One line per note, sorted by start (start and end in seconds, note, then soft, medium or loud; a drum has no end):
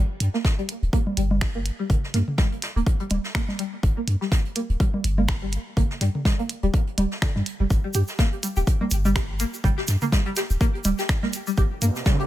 0.20 0.29 G2 loud
0.20 closed hi-hat medium
0.34 0.37 A#3 medium
0.34 snare soft
0.45 kick loud
0.45 snare loud
0.45 closed hi-hat medium
0.58 0.61 G3 medium
0.58 closed hi-hat soft
0.69 closed hi-hat medium
0.82 0.89 D1 loud
0.82 closed hi-hat soft
0.93 0.97 A#3 medium
0.93 kick loud
0.93 closed hi-hat medium
1.07 low conga medium
1.17 1.71 G1 loud
1.17 1.21 G3 medium
1.17 closed hi-hat medium
1.31 low conga medium
1.41 finger snap loud
1.41 kick loud
1.41 snare loud
1.41 closed hi-hat medium
1.55 1.58 A#3 medium
1.66 closed hi-hat medium
1.79 1.82 G3 medium
1.90 1.98 G1 loud
1.90 kick loud
1.90 closed hi-hat medium
1.90 high tom medium
2.04 snare soft
2.14 2.22 G2 loud
2.14 2.18 A#3 medium
2.14 snare soft
2.14 closed hi-hat medium
2.28 high tom medium
2.38 2.42 G3 medium
2.38 kick loud
2.38 snare loud
2.38 closed hi-hat medium
2.38 low conga medium
2.52 closed hi-hat soft
2.62 snare loud
2.62 closed hi-hat loud
2.62 closed hi-hat medium
2.76 2.82 D1 loud
2.76 2.79 A#3 medium
2.76 closed hi-hat soft
2.86 kick loud
2.86 closed hi-hat loud
3.00 3.03 G3 medium
3.00 closed hi-hat soft
3.09 3.19 D1 medium
3.09 closed hi-hat medium
3.09 low conga loud
3.24 snare medium
3.35 3.39 A#3 medium
3.35 finger snap loud
3.35 kick loud
3.35 snare loud
3.35 closed hi-hat medium
3.49 snare soft
3.49 low conga medium
3.59 3.63 G3 medium
3.59 closed hi-hat medium
3.83 3.92 G1 loud
3.83 kick loud
3.83 closed hi-hat medium
3.97 4.00 A#3 medium
4.07 4.16 G2 loud
4.07 closed hi-hat medium
4.21 4.24 G3 medium
4.21 snare soft
4.32 kick loud
4.32 snare loud
4.32 closed hi-hat medium
4.45 closed hi-hat soft
4.55 4.60 A#3 medium
4.55 closed hi-hat medium
4.55 closed hi-hat loud
4.70 4.76 D1 loud
4.70 closed hi-hat soft
4.80 4.84 G3 medium
4.80 kick loud
4.80 closed hi-hat medium
4.94 low conga medium
5.04 5.58 G1 loud
5.04 closed hi-hat medium
5.18 5.21 A#3 medium
5.18 low conga loud
5.28 finger snap loud
5.28 kick loud
5.28 snare loud
5.28 closed hi-hat medium
5.42 5.45 G3 medium
5.52 closed hi-hat medium
5.52 closed hi-hat loud
5.77 5.85 G1 loud
5.77 5.81 A#3 medium
5.77 kick loud
5.77 closed hi-hat medium
5.77 high tom medium
5.90 snare soft
6.01 6.09 G2 medium
6.01 6.05 G3 medium
6.01 snare soft
6.01 closed hi-hat loud
6.01 closed hi-hat medium
6.15 high tom medium
6.25 kick loud
6.25 snare loud
6.25 closed hi-hat medium
6.25 low conga medium
6.39 6.42 A#3 medium
6.39 closed hi-hat soft
6.49 closed hi-hat medium
6.63 6.69 D1 loud
6.63 6.66 G3 medium
6.63 closed hi-hat soft
6.74 kick loud
6.74 closed hi-hat medium
6.87 closed hi-hat soft
6.97 7.06 D1 medium
6.97 7.04 G3 medium
6.97 closed hi-hat medium
6.97 low conga medium
7.11 snare medium
7.22 7.28 D3 loud
7.22 finger snap loud
7.22 kick loud
7.22 snare loud
7.22 closed hi-hat medium
7.36 7.42 G2 loud
7.36 snare soft
7.36 low conga medium
7.46 closed hi-hat loud
7.46 closed hi-hat medium
7.60 7.66 F1 medium
7.60 7.63 G3 medium
7.70 7.79 G1 loud
7.70 kick loud
7.70 closed hi-hat medium
7.70 shaker soft
7.84 7.87 G3 medium
7.94 8.03 G2 loud
7.94 7.98 G4 medium
7.94 closed hi-hat medium
7.94 shaker medium
8.08 snare soft
8.08 shaker soft
8.19 8.23 A#3 medium
8.19 kick loud
8.19 snare loud
8.19 closed hi-hat medium
8.19 shaker soft
8.32 closed hi-hat soft
8.43 8.47 G3 medium
8.43 closed hi-hat medium
8.43 shaker medium
8.56 8.63 D1 medium
8.56 8.60 G4 medium
8.56 closed hi-hat soft
8.56 shaker medium
8.67 kick loud
8.67 closed hi-hat loud
8.67 shaker soft
8.81 8.84 A#3 medium
8.81 low conga medium
8.91 9.45 G1 loud
8.91 closed hi-hat medium
8.91 shaker medium
9.05 9.08 G3 medium
9.05 low conga medium
9.05 shaker medium
9.15 9.19 G4 medium
9.15 finger snap loud
9.15 kick loud
9.15 snare loud
9.15 closed hi-hat medium
9.15 shaker soft
9.39 9.44 A#3 medium
9.39 closed hi-hat medium
9.39 shaker medium
9.54 shaker medium
9.64 9.72 G1 loud
9.64 9.68 G3 medium
9.64 kick loud
9.64 closed hi-hat medium
9.64 high tom soft
9.64 shaker soft
9.78 9.81 G4 medium
9.78 snare soft
9.87 9.96 G2 loud
9.87 snare soft
9.87 closed hi-hat medium
9.87 shaker medium
10.01 10.05 A#3 medium
10.01 high tom medium
10.01 shaker soft
10.12 kick loud
10.12 snare loud
10.12 closed hi-hat medium
10.12 low conga medium
10.12 shaker soft
10.26 10.29 G3 medium
10.26 closed hi-hat soft
10.36 10.40 G4 medium
10.36 snare loud
10.36 closed hi-hat medium
10.36 shaker medium
10.50 10.57 D1 loud
10.50 closed hi-hat soft
10.50 shaker soft
10.61 10.65 A#3 medium
10.61 kick loud
10.61 closed hi-hat medium
10.61 shaker soft
10.75 closed hi-hat soft
10.84 10.93 D1 medium
10.84 10.89 G3 medium
10.84 closed hi-hat medium
10.84 low conga medium
10.84 shaker medium
10.98 11.02 G4 medium
10.98 snare medium
10.98 shaker soft
11.09 finger snap loud
11.09 kick loud
11.09 snare loud
11.09 closed hi-hat medium
11.09 shaker soft
11.23 11.26 A#3 medium
11.23 snare soft
11.23 low conga medium
11.33 closed hi-hat medium
11.33 shaker medium
11.47 11.50 G3 medium
11.47 shaker soft
11.57 11.66 G1 loud
11.57 11.61 G4 medium
11.57 kick loud
11.57 closed hi-hat medium
11.57 riser medium
11.57 shaker soft
11.82 11.90 G2 loud
11.82 11.86 A#3 medium
11.82 closed hi-hat medium
11.82 shaker medium
11.96 snare soft
11.96 shaker soft
12.06 12.10 G3 medium
12.06 kick loud
12.06 snare loud
12.06 closed hi-hat medium
12.06 shaker soft
12.20 12.23 G4 medium
12.20 closed hi-hat soft